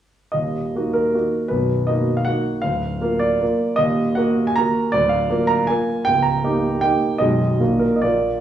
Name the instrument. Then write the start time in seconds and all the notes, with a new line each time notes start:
grand piano
0.32 D#1 D#2 D#5
0.75 A#3 D#4 F#4
0.93 A#4
1.14 A#3 D#4 F#4
1.48 B0 B1 B4
1.87 A#3 D#4 F#4 D#5
2.17 F5
2.25 A#3 D#4 F#4 F#5
2.62 D1 D2 F5
3.01 A#3 F4 A#4
3.19 D5
3.40 A#3 F4 A#4
3.76 D#1 D#2 D#5
4.15 A#3 F#4 A#4 F#5
4.47 G#5
4.56 A#3 F#4 A#4 A#5
4.92 D1 D2 D5
5.09 F5
5.30 A#3 F4 A#4
5.47 A#5
5.67 A#3 F4 A#4 G#5
6.05 C#1 C#2 G5
6.22 A#5
6.44 A#3 D#4 G4
6.81 A#3 D#4 G4 G5
7.18 B0 B1 G#3 D#4 G#4 D#5
7.60 A#1 A#2 A#3 D#4 F#4
7.79 A#4
7.96 D#5
8.02 A#1 A#2 A#3 F4 A#4 D5